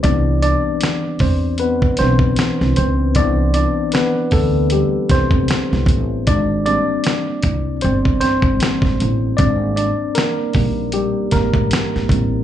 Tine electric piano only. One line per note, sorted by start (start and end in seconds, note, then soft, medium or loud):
0.00 1.16 E3 medium
0.00 4.74 G3 medium
0.00 1.17 B3 soft
0.00 1.22 C4 medium
0.00 4.72 G4 medium
0.00 1.20 C5 medium
0.00 0.21 D5 medium
0.04 0.22 D4 medium
0.43 1.17 D4 medium
0.43 1.23 D5 medium
1.20 1.58 C4 medium
1.20 1.57 C5 medium
1.60 1.97 B3 medium
1.60 1.98 B4 medium
1.99 2.34 E3 soft
1.99 2.73 C4 medium
1.99 2.34 D4 medium
1.99 2.34 B4 soft
1.99 2.76 C5 loud
2.77 3.14 C4 medium
2.77 3.17 C5 medium
3.16 4.29 E3 medium
3.16 3.94 B3 medium
3.16 3.53 D4 medium
3.16 3.53 D5 loud
3.54 3.92 D4 medium
3.54 3.95 D5 medium
3.94 4.31 B3 medium
3.94 4.34 B4 medium
4.33 4.70 A3 medium
4.33 4.73 A4 medium
4.72 4.91 G3 medium
4.72 4.90 G4 medium
5.11 6.25 C4 medium
5.11 6.31 C5 medium
6.27 6.64 D4 medium
6.27 6.65 D5 loud
6.66 8.59 G3 medium
6.66 8.59 A#3 soft
6.66 7.83 C4 medium
6.66 7.80 D4 medium
6.66 7.86 D5 medium
7.82 8.20 C4 medium
7.82 8.19 C5 medium
8.21 8.60 C4 medium
8.21 9.42 C5 medium
8.60 8.96 G3 soft
8.60 8.96 A#3 soft
8.60 8.96 C4 medium
9.37 9.75 D4 medium
9.37 9.75 D5 loud
9.76 10.14 D4 medium
9.76 10.17 D5 medium
10.15 10.55 A#3 medium
10.15 10.96 A#4 medium
10.56 10.94 G3 medium
10.56 11.33 A#3 soft
10.56 12.44 D#4 medium
10.93 11.31 G3 medium
10.93 11.34 G4 medium
11.32 12.10 A#3 medium
11.32 12.44 A#4 medium
12.11 12.44 G3 soft
12.11 12.44 A#3 soft
12.11 12.44 C4 medium